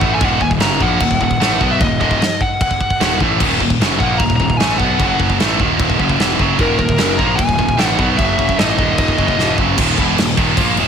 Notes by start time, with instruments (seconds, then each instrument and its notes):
Already playing: lead electric guitar F#5
0.00 picked electric bass A1, distorted electric guitar A2 E3 A3, kick
0.15 lead electric guitar G#5
0.20 picked electric bass D#1, distorted electric guitar D#2 A#2 D#3, lead electric guitar F#5, kick, china
0.41 picked electric bass D#1, distorted electric guitar D#2 A#2, lead electric guitar G#5, kick
0.51 kick
0.60 picked electric bass F#1, distorted electric guitar F#2 C#3 F#3, lead electric guitar A#5, snare, china
0.80 picked electric bass A#1, distorted electric guitar A#2 F3 A#3, lead electric guitar F#5, kick
1.00 picked electric bass D#1, distorted electric guitar D#2 A#2, kick, china
1.11 kick
1.21 picked electric bass D#1, distorted electric guitar D#2 A#2, lead electric guitar F#5, kick
1.31 kick
1.40 picked electric bass A1, distorted electric guitar A2 E3 A3, snare, china
1.61 picked electric bass B1, distorted electric guitar B2 F#3 B3, kick
1.72 lead electric guitar E5
1.81 picked electric bass D#1, distorted electric guitar D#2 A#2, lead electric guitar D#5, kick, china
2.01 picked electric bass D#1, distorted electric guitar D#2 A#2 D#3, lead electric guitar D#5, kick
2.11 kick
2.22 snare, china
2.41 lead electric guitar F#5, kick
2.61 lead electric guitar F#5, kick, china
2.71 kick
2.81 kick
2.90 kick
3.00 picked electric bass D#1, distorted electric guitar D#2 A#2 D#3, snare, china
3.20 picked electric bass A1, distorted electric guitar A2 E3 A3, kick
3.40 picked electric bass D#1, distorted electric guitar D#2 A#2 D#3, kick, china, crash
3.60 picked electric bass D#1, distorted electric guitar D#2 A#2, kick
3.70 kick
3.80 picked electric bass F#1, distorted electric guitar F#2 C#3 F#3, snare, china
3.99 picked electric bass A#1, distorted electric guitar A#2 F3 A#3, lead electric guitar F#5, kick
4.18 picked electric bass D#1, distorted electric guitar D#2 A#2, lead electric guitar A#5, kick, china
4.30 kick
4.36 picked electric bass D#1, lead electric guitar A#5, kick
4.40 distorted electric guitar D#2 A#2
4.50 kick
4.57 picked electric bass A1, distorted electric guitar A2, lead electric guitar G#5, snare, china
4.61 distorted electric guitar E3 A3
4.78 picked electric bass B1, distorted electric guitar B2 F#3 B3, lead electric guitar F#5, kick
4.99 picked electric bass F#1, distorted electric guitar F#2 C#3 F#3, kick, china
5.20 kick
5.30 kick
5.40 picked electric bass A1, distorted electric guitar A2 E3 A3, snare, china
5.59 picked electric bass D#1, distorted electric guitar D#2 A#2 D#3, kick
5.80 kick, china
5.90 kick
5.99 picked electric bass F#1, distorted electric guitar F#2 C#3 F#3, kick
6.09 kick
6.19 picked electric bass E1, distorted electric guitar E2 B2 E3, snare, china
6.39 picked electric bass F#1, distorted electric guitar F#2 C#3 F#3, kick
6.59 picked electric bass D#1, distorted electric guitar D#2 A#2 D#3, lead electric guitar A#4, kick, china
6.79 picked electric bass D#1, distorted electric guitar D#2 A#2, lead electric guitar A#4, kick
6.89 kick
6.98 picked electric bass F#1, distorted electric guitar F#2 C#3 F#3, snare, china
7.18 picked electric bass A#1, distorted electric guitar A#2 F3 A#3, lead electric guitar A#5, kick
7.36 picked electric bass D#1, distorted electric guitar D#2 A#2, lead electric guitar G#5, kick, china
7.49 kick
7.59 picked electric bass D#1, distorted electric guitar D#2 A#2, kick
7.69 kick
7.78 picked electric bass A1, distorted electric guitar A2 E3 A3, snare, china
7.84 lead electric guitar F#5
7.98 picked electric bass B1, distorted electric guitar B2 F#3 B3, lead electric guitar F#5, kick
8.17 picked electric bass F#1, distorted electric guitar F#2 C#3 F#3, lead electric guitar E5, kick, china
8.39 kick
8.49 kick
8.58 picked electric bass A1, distorted electric guitar A2 E3 A3, lead electric guitar D#5, snare, china
8.78 picked electric bass D#1, distorted electric guitar D#2 A#2 D#3, kick
8.98 lead electric guitar D#5, kick, china
9.08 kick
9.18 picked electric bass F#1, distorted electric guitar F#2 C#3 F#3, kick
9.28 kick
9.39 picked electric bass E1, distorted electric guitar E2 B2 E3, snare
9.58 picked electric bass F#1, distorted electric guitar F#2 C#3 F#3, kick
9.78 picked electric bass D#1, distorted electric guitar D#2 A#2 D#3, kick, crash
9.98 picked electric bass E1, distorted electric guitar E2 B2 E3, kick, crash
10.18 picked electric bass D#1, distorted electric guitar D#2 A#2, snare, crash
10.37 picked electric bass D#1, distorted electric guitar D#2 A#2 D#3, kick, crash
10.57 picked electric bass A#1, distorted electric guitar A#2 F3 A#3, kick, crash
10.77 picked electric bass D#1, distorted electric guitar D#2 A#2 D#3, crash